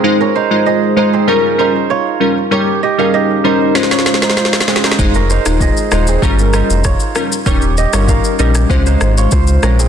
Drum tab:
SH |--------------------------------|--------------------------------|x-x-x-x-x-x-x-x-x-x-x-x-x-x-x-x-|x-x-x-x-x-x-x-x-x-x-x-x-x-x-x-x-|
SD |--------------------------------|----------------oooooooooooooooo|------r-----r-------r---r---r---|------r-------r-----r-------r---|
BD |--------------------------------|--------------------------------|o-------o-------o-------o-------|o-------o-------o-------o-------|